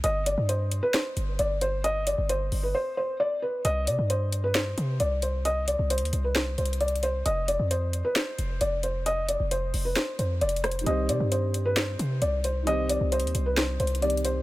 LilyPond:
<<
  \new Staff \with { instrumentName = "Felt piano" } { \time 4/4 \key c \minor \tempo 4 = 133 ees''8 d''8 c''8. b'16 c''4 d''8 c''8 | ees''8 d''8 c''8. b'16 c''8 c''8 d''8 b'8 | ees''8 d''8 c''8. b'16 c''4 d''8 c''8 | ees''8 d''8 c''8. b'16 c''8 c''8 d''8 c''8 |
ees''8 d''8 c''8. b'16 c''4 d''8 c''8 | ees''8 d''8 c''8. b'16 c''8 c''8 d''8 c''8 | ees''8 d''8 c''8. b'16 c''4 d''8 c''8 | ees''8 d''8 c''8. b'16 c''8 c''8 d''8 c''8 | }
  \new Staff \with { instrumentName = "Grand piano" } { \time 4/4 \key c \minor r1 | r1 | r1 | r1 |
r1 | r1 | <ees g c' g' c''>1 | <ees g c' g' c''>2. <ees g c' g' d''>4 | }
  \new Staff \with { instrumentName = "808-style bass" } { \clef bass \time 4/4 \key c \minor g,,8. g,4 r8. g,,8 g,,4~ | g,,8. g,,8. g,,8 r2 | c,8 c16 g,4.~ g,16 c8 c,4~ | c,8. c,8 ees,16 c,4 c,4. |
f,,8. f,4 r8. f,,8 f,,4~ | f,,8. f,,8. f,,8 r8 f,8 f,,4 | c,8 c16 g,4.~ g,16 c8 c,4~ | c,8. c,8 ees,16 c,4 c,4. | }
  \new DrumStaff \with { instrumentName = "Drums" } \drummode { \time 4/4 hh8 hh8 hh8 hh8 <hh sn>8 hh8 hh8 hh8 | hh8 hh8 hh8 hho8 r4 r4 | hh8 hh8 hh8 hh8 <hh sn>8 hh8 hh8 hh8 | hh8 hh8 \tuplet 3/2 { hh16 hh16 hh16 hh16 r16 r16 <hh sn>16 r16 r16 hh16 hh16 hh16 hh16 hh16 hh16 hh16 r16 r16 } |
hh8 hh8 hh8 hh8 <hh sn>8 hh8 hh8 hh8 | hh8 hh8 hh8 hho8 <hh sn>8 hh8 \tuplet 3/2 { hh16 hh16 hh16 <hh ss>16 hh16 hh16 } | hh8 hh8 hh8 hh8 <hh sn>8 hh8 hh8 hh8 | hh8 hh8 \tuplet 3/2 { hh16 hh16 hh16 hh16 r16 r16 <hh sn>16 r16 r16 hh16 hh16 hh16 hh16 hh16 hh16 hh16 r16 r16 } | }
>>